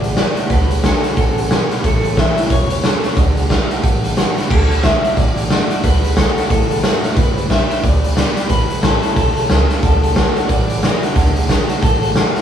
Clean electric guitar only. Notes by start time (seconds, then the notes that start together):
Already playing: D5
0.19 D5
0.51 B4
0.86 A4
1.18 A4
1.86 A4
2.19 E5
2.52 C#5
2.72 C#5
2.86 A4
3.06 C#5
3.18 D5
4.50 A4
4.84 E5
5.16 D5
5.50 D5
5.84 B4
6.17 A4
6.49 A4
7.16 B4
7.50 E5
7.83 D5
8.16 D5
8.49 B4
8.82 A4
9.16 A4
9.82 A4
10.48 D5
11.82 A4